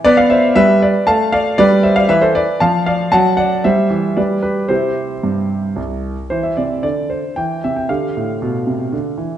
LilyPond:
<<
  \new Staff \with { instrumentName = "Grand piano" } { \time 3/4 \key c \major \tempo 4 = 116 << { <b' d''>16 <d'' f''>16 <c'' e''>8 <b' e''>8 <b' d''>8 <f'' a''>8 <d'' f''>8 | <b' d''>8 <c'' e''>16 <d'' f''>16 <b' e''>16 <a' c''>16 <b' d''>8 <f'' a''>8 <d'' f''>8 | <fis'' a''>8 <d'' fis''>8 <c'' e''>4 <b' d''>8 <g' b'>8 | <g' c''>2 r4 |
c''16 e''16 d''8 d''8 c''8 g''8 e''16 g''16 | f''2~ f''8 r8 | } \\ { r2. | r2. | r2. | r2. |
e'2 r4 | g'2. | } >> }
  \new Staff \with { instrumentName = "Grand piano" } { \clef bass \time 3/4 \key c \major b4 g4 a4 | g4 e4 f4 | fis4 g8 e8 g4 | <c c' e'>4 g,4 c,4 |
e8 c8 d4 e8 c8 | d8 a,8 b,8 c8 d8 e8 | }
>>